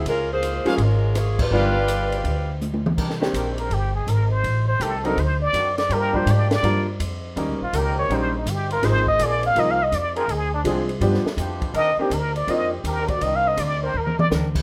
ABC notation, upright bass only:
X:1
M:4/4
L:1/8
Q:"Swing" 1/4=164
K:Cm
V:1 name="Upright bass" clef=bass
_D,,3 z A,,,4 | G,,,4 D,,4 | C,,2 B,,,2 G,,,2 A,,,2 | =A,,,2 C,,2 D,,2 ^F,,2 |
G,,2 A,,2 G,,2 F,,2 | (3E,, _D,, B,,, D,,2 B,,,2 G,,,2 | A,,,2 B,,,2 C,,2 F,,2 | D,,2 C,,2 G,, z F,,2 |
E,, z D,,2 F,,2 E,,2 | C,,2 D,,2 E,,2 D,,2 |]